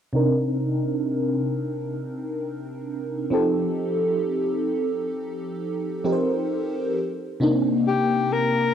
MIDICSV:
0, 0, Header, 1, 3, 480
1, 0, Start_track
1, 0, Tempo, 909091
1, 70, Time_signature, 4, 2, 24, 8
1, 4615, End_track
2, 0, Start_track
2, 0, Title_t, "Alto saxophone"
2, 0, Program_c, 0, 65
2, 4158, Note_on_c, 0, 67, 91
2, 4397, Note_on_c, 0, 70, 102
2, 4405, Note_off_c, 0, 67, 0
2, 4615, Note_off_c, 0, 70, 0
2, 4615, End_track
3, 0, Start_track
3, 0, Title_t, "FM electric piano"
3, 0, Program_c, 1, 5
3, 67, Note_on_c, 1, 48, 65
3, 70, Note_on_c, 1, 60, 56
3, 76, Note_on_c, 1, 62, 58
3, 80, Note_on_c, 1, 63, 59
3, 84, Note_on_c, 1, 70, 69
3, 160, Control_c, 1, 64, 127
3, 1727, Note_off_c, 1, 48, 0
3, 1729, Note_off_c, 1, 60, 0
3, 1732, Note_off_c, 1, 62, 0
3, 1734, Note_off_c, 1, 63, 0
3, 1736, Note_off_c, 1, 70, 0
3, 1744, Note_on_c, 1, 53, 68
3, 1749, Note_on_c, 1, 60, 57
3, 1753, Note_on_c, 1, 63, 60
3, 1757, Control_c, 1, 64, 0
3, 1757, Note_on_c, 1, 67, 64
3, 1762, Note_on_c, 1, 69, 70
3, 1860, Control_c, 1, 64, 127
3, 3166, Note_off_c, 1, 53, 0
3, 3169, Note_off_c, 1, 60, 0
3, 3171, Note_off_c, 1, 63, 0
3, 3173, Note_off_c, 1, 67, 0
3, 3175, Note_off_c, 1, 69, 0
3, 3190, Note_on_c, 1, 53, 56
3, 3192, Note_on_c, 1, 60, 49
3, 3194, Note_on_c, 1, 63, 49
3, 3196, Note_on_c, 1, 67, 52
3, 3198, Note_on_c, 1, 70, 50
3, 3231, Note_off_c, 1, 70, 0
3, 3233, Note_on_c, 1, 72, 59
3, 3670, Note_off_c, 1, 53, 0
3, 3671, Note_off_c, 1, 60, 0
3, 3672, Note_off_c, 1, 63, 0
3, 3673, Note_off_c, 1, 67, 0
3, 3678, Control_c, 1, 64, 0
3, 3692, Note_off_c, 1, 72, 0
3, 3908, Note_on_c, 1, 48, 67
3, 3912, Note_on_c, 1, 60, 65
3, 3917, Note_on_c, 1, 62, 62
3, 3921, Note_on_c, 1, 63, 66
3, 3925, Note_on_c, 1, 58, 75
3, 4005, Control_c, 1, 64, 127
3, 4615, Note_off_c, 1, 48, 0
3, 4615, Note_off_c, 1, 58, 0
3, 4615, Note_off_c, 1, 60, 0
3, 4615, Note_off_c, 1, 62, 0
3, 4615, Note_off_c, 1, 63, 0
3, 4615, End_track
0, 0, End_of_file